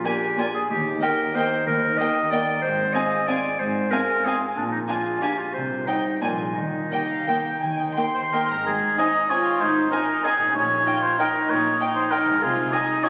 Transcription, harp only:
Already playing: A#2 A#3 G#4 A#4
0.05 D4
0.21 G#4
0.38 A#4
0.54 G#4
0.70 D#3
0.85 D#4
1.01 G4
1.17 A#4
1.34 D#5
1.50 A#4
1.66 D#3
1.81 D#4
1.98 G4
2.15 A#4
2.31 D#5
2.47 A#4
2.62 G#2
2.78 C4
2.94 F4
3.11 G#4
3.28 C5
3.44 G#4
3.59 G#2
3.75 C4
3.92 F4
4.08 G#4
4.25 C5
4.41 G#4
4.56 A#2
4.71 A#3
4.88 D4
5.05 G#4
5.22 A#4
5.38 G#4
5.54 C3
5.70 G3
5.87 D#4
6.05 G4
6.22 A#2
6.40 D4 G#4
6.56 D#3
6.74 D#4
6.91 G4
7.10 A#4
7.28 D#5
7.45 A#4
7.62 D#3
7.79 D#4
7.96 G4
8.15 A#4
8.33 D#5
8.48 G#2 A#4
8.52 C4
8.57 D#4
8.61 G#4
10.37 A#2
10.42 A#3
10.46 D#4
10.50 G4
12.24 C3
12.29 G#3
12.33 D#4
12.38 G#4

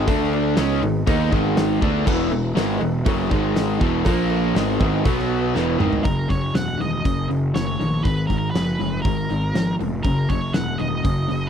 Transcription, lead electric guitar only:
6.04 A#4
6.29 C#5
6.55 F#5
6.81 D#5
7.54 C#5
8.03 B4
8.27 A#4
8.38 A#4
8.51 B4
9.02 A#4
10.03 A#4
10.29 C#5
10.53 F#5
10.78 D#5

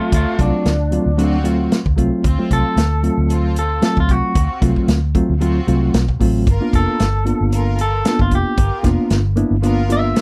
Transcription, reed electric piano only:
Already playing: F#3 A3 C4 F4
0.38 F#3 A3 C4 F4
0.91 F#3 A3 C4 F4
1.17 F#3 A3 C4 D4
1.44 F#3 A3 C4 F4
1.97 F#3 A3 C4 F4
2.38 F#3 A3 C4 F4
3.03 F#3 A3 C4 F4
3.82 F#3 A3 C4 F4
4.61 F#3 A3 C4 F4
5.14 F#3 A3 C4 F4
5.41 F#3 A3 C4 F4
5.67 F#3 A3 C4 F4
6.19 F#3 A3 C4 F4
6.61 A#3 B3 D4 F4
7.25 A#3 B3 D4 F4
8.05 A#3 B3 D4 F4
8.83 A#3 B3 D4 F4
9.36 A#3 B3 D4 E4
9.63 A#3 B3 D4 F4
9.88 A#3 B3 D4 F4

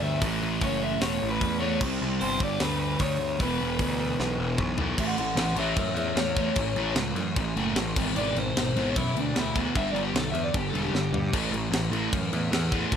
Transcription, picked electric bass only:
0.02 D2
0.22 A1
0.42 A1
0.61 F#1
1.01 E1
1.22 A1
1.42 E2
1.81 C2
2.02 C2
2.21 G1
2.40 G1
2.60 D2
3.00 D2
3.20 D2
3.40 E1
3.61 E1
3.80 D2
4.20 B1
4.39 E1
4.58 B1
4.97 A1
5.17 A1
5.35 A1
5.55 A1
5.76 F#2
5.94 E2
6.15 E2
6.56 A1
6.76 A1
6.96 C#2
7.15 F#2
7.36 A1
7.56 F#1
7.76 A1
7.97 G#1
8.16 G#1
8.35 G#1
8.56 G#1
8.76 G#1
8.96 F#2
9.15 D2
9.35 D2
9.76 G1
9.93 G1
10.13 B1
10.33 E2
10.54 G1
10.74 E1
10.94 G1
11.12 G2
11.34 A1
11.51 A1
11.71 A1
11.91 A1
12.13 F#2
12.33 E2
12.51 E2
12.93 A1

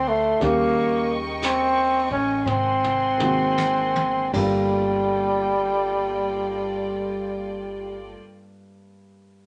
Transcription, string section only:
Already playing: A4 D5 F#5 C6
0.39 A#4 D#5 G5 C#6
2.48 A#4 F#5 G#5 C6
4.34 A#3 F4 A4 D5 G5

